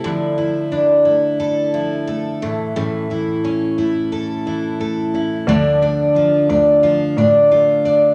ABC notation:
X:1
M:4/4
L:1/8
Q:"Swing 16ths" 1/4=88
K:Dm
V:1 name="Twelve-string acoustic guitar"
D, E D E A E A A,, | A,, E ^C E A E A E | D, D F D F D F D |]
V:2 name="Nylon-string guitar"
[F,E] F, E A, E F, A, E, | [E,^C] E, C A, C E, A, C | F, A, F, A, F, D A, D |]
V:3 name="Cello" clef=bass
z8 | z8 | D,,3 D,,2 A,,2 z |]